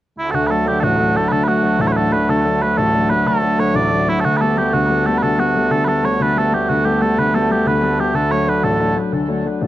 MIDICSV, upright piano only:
0, 0, Header, 1, 2, 480
1, 0, Start_track
1, 0, Key_signature, 2, "major"
1, 0, Tempo, 325733
1, 495, Time_signature, 12, 3, 24, 8
1, 14253, End_track
2, 0, Start_track
2, 0, Title_t, "Upright piano"
2, 0, Program_c, 0, 0
2, 495, Note_on_c, 0, 38, 62
2, 733, Note_on_c, 0, 54, 43
2, 740, Note_on_c, 0, 57, 40
2, 746, Note_on_c, 0, 62, 42
2, 947, Note_off_c, 0, 54, 0
2, 950, Note_off_c, 0, 57, 0
2, 958, Note_off_c, 0, 62, 0
2, 960, Note_off_c, 0, 38, 0
2, 969, Note_on_c, 0, 54, 41
2, 972, Note_on_c, 0, 57, 43
2, 980, Note_on_c, 0, 62, 47
2, 1220, Note_on_c, 0, 33, 68
2, 1355, Note_off_c, 0, 54, 0
2, 1357, Note_off_c, 0, 57, 0
2, 1362, Note_off_c, 0, 62, 0
2, 1444, Note_on_c, 0, 54, 45
2, 1445, Note_on_c, 0, 57, 39
2, 1454, Note_on_c, 0, 62, 46
2, 1670, Note_off_c, 0, 54, 0
2, 1678, Note_off_c, 0, 62, 0
2, 1680, Note_off_c, 0, 57, 0
2, 1683, Note_off_c, 0, 33, 0
2, 1693, Note_on_c, 0, 54, 45
2, 1700, Note_on_c, 0, 62, 52
2, 1702, Note_on_c, 0, 57, 38
2, 1934, Note_on_c, 0, 38, 57
2, 2077, Note_off_c, 0, 54, 0
2, 2082, Note_off_c, 0, 62, 0
2, 2083, Note_off_c, 0, 57, 0
2, 2168, Note_on_c, 0, 54, 43
2, 2174, Note_on_c, 0, 57, 43
2, 2183, Note_on_c, 0, 62, 51
2, 2378, Note_off_c, 0, 54, 0
2, 2382, Note_off_c, 0, 57, 0
2, 2389, Note_off_c, 0, 62, 0
2, 2400, Note_off_c, 0, 38, 0
2, 2400, Note_on_c, 0, 54, 46
2, 2404, Note_on_c, 0, 57, 40
2, 2412, Note_on_c, 0, 62, 47
2, 2640, Note_on_c, 0, 33, 57
2, 2790, Note_off_c, 0, 54, 0
2, 2792, Note_off_c, 0, 57, 0
2, 2797, Note_off_c, 0, 62, 0
2, 2885, Note_on_c, 0, 54, 45
2, 2894, Note_on_c, 0, 57, 37
2, 2894, Note_on_c, 0, 62, 48
2, 3098, Note_off_c, 0, 54, 0
2, 3103, Note_off_c, 0, 57, 0
2, 3108, Note_off_c, 0, 62, 0
2, 3112, Note_off_c, 0, 33, 0
2, 3120, Note_on_c, 0, 54, 41
2, 3125, Note_on_c, 0, 57, 35
2, 3130, Note_on_c, 0, 62, 50
2, 3369, Note_on_c, 0, 38, 58
2, 3509, Note_off_c, 0, 54, 0
2, 3513, Note_off_c, 0, 57, 0
2, 3516, Note_off_c, 0, 62, 0
2, 3605, Note_on_c, 0, 54, 42
2, 3608, Note_on_c, 0, 57, 42
2, 3614, Note_on_c, 0, 62, 47
2, 3827, Note_off_c, 0, 54, 0
2, 3831, Note_off_c, 0, 57, 0
2, 3837, Note_off_c, 0, 38, 0
2, 3837, Note_off_c, 0, 62, 0
2, 3849, Note_on_c, 0, 54, 44
2, 3853, Note_on_c, 0, 57, 38
2, 3859, Note_on_c, 0, 62, 45
2, 4098, Note_on_c, 0, 33, 65
2, 4235, Note_off_c, 0, 54, 0
2, 4237, Note_off_c, 0, 57, 0
2, 4241, Note_off_c, 0, 62, 0
2, 4332, Note_on_c, 0, 54, 45
2, 4340, Note_on_c, 0, 62, 50
2, 4342, Note_on_c, 0, 57, 38
2, 4551, Note_off_c, 0, 54, 0
2, 4559, Note_off_c, 0, 57, 0
2, 4561, Note_off_c, 0, 33, 0
2, 4561, Note_off_c, 0, 62, 0
2, 4573, Note_on_c, 0, 54, 45
2, 4581, Note_on_c, 0, 57, 43
2, 4583, Note_on_c, 0, 62, 53
2, 4811, Note_on_c, 0, 38, 61
2, 4957, Note_off_c, 0, 54, 0
2, 4962, Note_off_c, 0, 57, 0
2, 4963, Note_off_c, 0, 62, 0
2, 5038, Note_on_c, 0, 54, 49
2, 5047, Note_on_c, 0, 57, 45
2, 5054, Note_on_c, 0, 62, 48
2, 5253, Note_off_c, 0, 54, 0
2, 5264, Note_off_c, 0, 57, 0
2, 5266, Note_off_c, 0, 62, 0
2, 5275, Note_on_c, 0, 54, 41
2, 5277, Note_off_c, 0, 38, 0
2, 5286, Note_on_c, 0, 57, 42
2, 5288, Note_on_c, 0, 62, 51
2, 5523, Note_on_c, 0, 33, 65
2, 5666, Note_off_c, 0, 54, 0
2, 5673, Note_off_c, 0, 57, 0
2, 5674, Note_off_c, 0, 62, 0
2, 5761, Note_on_c, 0, 54, 42
2, 5765, Note_on_c, 0, 57, 37
2, 5774, Note_on_c, 0, 62, 47
2, 5986, Note_off_c, 0, 54, 0
2, 5993, Note_off_c, 0, 33, 0
2, 5993, Note_off_c, 0, 57, 0
2, 6001, Note_off_c, 0, 62, 0
2, 6008, Note_on_c, 0, 54, 49
2, 6015, Note_on_c, 0, 57, 38
2, 6023, Note_on_c, 0, 62, 47
2, 6202, Note_off_c, 0, 54, 0
2, 6206, Note_off_c, 0, 57, 0
2, 6211, Note_off_c, 0, 62, 0
2, 6261, Note_on_c, 0, 38, 60
2, 6499, Note_on_c, 0, 55, 41
2, 6500, Note_on_c, 0, 57, 41
2, 6511, Note_on_c, 0, 59, 46
2, 6714, Note_off_c, 0, 55, 0
2, 6717, Note_off_c, 0, 57, 0
2, 6722, Note_off_c, 0, 38, 0
2, 6732, Note_off_c, 0, 59, 0
2, 6736, Note_on_c, 0, 55, 46
2, 6739, Note_on_c, 0, 57, 41
2, 6754, Note_on_c, 0, 59, 49
2, 6976, Note_on_c, 0, 38, 61
2, 7118, Note_off_c, 0, 55, 0
2, 7120, Note_off_c, 0, 57, 0
2, 7129, Note_off_c, 0, 59, 0
2, 7209, Note_on_c, 0, 55, 46
2, 7221, Note_on_c, 0, 57, 42
2, 7223, Note_on_c, 0, 59, 49
2, 7434, Note_off_c, 0, 55, 0
2, 7440, Note_off_c, 0, 38, 0
2, 7444, Note_off_c, 0, 57, 0
2, 7447, Note_off_c, 0, 59, 0
2, 7457, Note_on_c, 0, 55, 47
2, 7466, Note_on_c, 0, 57, 40
2, 7469, Note_on_c, 0, 59, 54
2, 7705, Note_on_c, 0, 38, 62
2, 7839, Note_off_c, 0, 55, 0
2, 7844, Note_off_c, 0, 57, 0
2, 7846, Note_off_c, 0, 59, 0
2, 7925, Note_on_c, 0, 55, 51
2, 7931, Note_on_c, 0, 57, 41
2, 7940, Note_on_c, 0, 59, 55
2, 8163, Note_off_c, 0, 55, 0
2, 8164, Note_off_c, 0, 38, 0
2, 8165, Note_off_c, 0, 57, 0
2, 8173, Note_off_c, 0, 59, 0
2, 8185, Note_on_c, 0, 55, 45
2, 8187, Note_on_c, 0, 57, 41
2, 8195, Note_on_c, 0, 59, 55
2, 8412, Note_on_c, 0, 38, 61
2, 8564, Note_off_c, 0, 55, 0
2, 8565, Note_off_c, 0, 57, 0
2, 8570, Note_off_c, 0, 59, 0
2, 8647, Note_on_c, 0, 55, 40
2, 8655, Note_on_c, 0, 57, 34
2, 8660, Note_on_c, 0, 59, 47
2, 8864, Note_off_c, 0, 55, 0
2, 8867, Note_off_c, 0, 57, 0
2, 8875, Note_off_c, 0, 59, 0
2, 8877, Note_off_c, 0, 38, 0
2, 8886, Note_on_c, 0, 55, 41
2, 8889, Note_on_c, 0, 57, 42
2, 8897, Note_on_c, 0, 59, 48
2, 9131, Note_on_c, 0, 38, 59
2, 9272, Note_off_c, 0, 55, 0
2, 9274, Note_off_c, 0, 57, 0
2, 9279, Note_off_c, 0, 59, 0
2, 9371, Note_on_c, 0, 55, 39
2, 9380, Note_on_c, 0, 57, 37
2, 9385, Note_on_c, 0, 59, 49
2, 9590, Note_off_c, 0, 55, 0
2, 9595, Note_off_c, 0, 57, 0
2, 9597, Note_off_c, 0, 38, 0
2, 9598, Note_off_c, 0, 59, 0
2, 9612, Note_on_c, 0, 55, 40
2, 9617, Note_on_c, 0, 57, 39
2, 9620, Note_on_c, 0, 59, 50
2, 9863, Note_on_c, 0, 38, 61
2, 9996, Note_off_c, 0, 55, 0
2, 9999, Note_off_c, 0, 57, 0
2, 10001, Note_off_c, 0, 59, 0
2, 10094, Note_on_c, 0, 55, 43
2, 10099, Note_on_c, 0, 57, 42
2, 10106, Note_on_c, 0, 59, 52
2, 10313, Note_off_c, 0, 55, 0
2, 10323, Note_off_c, 0, 38, 0
2, 10323, Note_off_c, 0, 57, 0
2, 10331, Note_off_c, 0, 59, 0
2, 10336, Note_on_c, 0, 55, 46
2, 10346, Note_on_c, 0, 57, 42
2, 10353, Note_on_c, 0, 59, 48
2, 10584, Note_on_c, 0, 38, 62
2, 10718, Note_off_c, 0, 55, 0
2, 10724, Note_off_c, 0, 57, 0
2, 10728, Note_off_c, 0, 59, 0
2, 10814, Note_on_c, 0, 55, 48
2, 10820, Note_on_c, 0, 57, 43
2, 10823, Note_on_c, 0, 59, 53
2, 11044, Note_off_c, 0, 38, 0
2, 11044, Note_off_c, 0, 55, 0
2, 11047, Note_off_c, 0, 57, 0
2, 11055, Note_off_c, 0, 59, 0
2, 11066, Note_on_c, 0, 55, 44
2, 11070, Note_on_c, 0, 57, 39
2, 11077, Note_on_c, 0, 59, 45
2, 11292, Note_on_c, 0, 38, 57
2, 11444, Note_off_c, 0, 55, 0
2, 11447, Note_off_c, 0, 57, 0
2, 11451, Note_off_c, 0, 59, 0
2, 11528, Note_on_c, 0, 55, 41
2, 11536, Note_on_c, 0, 57, 42
2, 11543, Note_on_c, 0, 59, 46
2, 11739, Note_off_c, 0, 55, 0
2, 11748, Note_off_c, 0, 57, 0
2, 11752, Note_off_c, 0, 59, 0
2, 11758, Note_off_c, 0, 38, 0
2, 11761, Note_on_c, 0, 55, 41
2, 11770, Note_on_c, 0, 57, 38
2, 11775, Note_on_c, 0, 59, 45
2, 11957, Note_off_c, 0, 55, 0
2, 11963, Note_off_c, 0, 57, 0
2, 11966, Note_off_c, 0, 59, 0
2, 11995, Note_on_c, 0, 38, 54
2, 12239, Note_on_c, 0, 54, 41
2, 12250, Note_on_c, 0, 57, 40
2, 12254, Note_on_c, 0, 62, 47
2, 12457, Note_off_c, 0, 54, 0
2, 12459, Note_off_c, 0, 57, 0
2, 12467, Note_off_c, 0, 62, 0
2, 12469, Note_off_c, 0, 38, 0
2, 12479, Note_on_c, 0, 54, 44
2, 12481, Note_on_c, 0, 57, 41
2, 12489, Note_on_c, 0, 62, 48
2, 12727, Note_on_c, 0, 33, 64
2, 12869, Note_off_c, 0, 54, 0
2, 12870, Note_off_c, 0, 57, 0
2, 12875, Note_off_c, 0, 62, 0
2, 12967, Note_on_c, 0, 54, 45
2, 12970, Note_on_c, 0, 57, 40
2, 12975, Note_on_c, 0, 62, 52
2, 13169, Note_off_c, 0, 54, 0
2, 13173, Note_off_c, 0, 57, 0
2, 13176, Note_off_c, 0, 62, 0
2, 13191, Note_on_c, 0, 54, 46
2, 13195, Note_off_c, 0, 33, 0
2, 13195, Note_on_c, 0, 57, 44
2, 13198, Note_on_c, 0, 62, 53
2, 13447, Note_on_c, 0, 38, 63
2, 13584, Note_off_c, 0, 54, 0
2, 13586, Note_off_c, 0, 57, 0
2, 13588, Note_off_c, 0, 62, 0
2, 13681, Note_on_c, 0, 54, 49
2, 13682, Note_on_c, 0, 57, 44
2, 13686, Note_on_c, 0, 62, 57
2, 13900, Note_off_c, 0, 54, 0
2, 13904, Note_off_c, 0, 57, 0
2, 13907, Note_off_c, 0, 62, 0
2, 13916, Note_off_c, 0, 38, 0
2, 13923, Note_on_c, 0, 54, 44
2, 13926, Note_on_c, 0, 57, 43
2, 13929, Note_on_c, 0, 62, 54
2, 14172, Note_on_c, 0, 33, 60
2, 14253, Note_off_c, 0, 33, 0
2, 14253, Note_off_c, 0, 54, 0
2, 14253, Note_off_c, 0, 57, 0
2, 14253, Note_off_c, 0, 62, 0
2, 14253, End_track
0, 0, End_of_file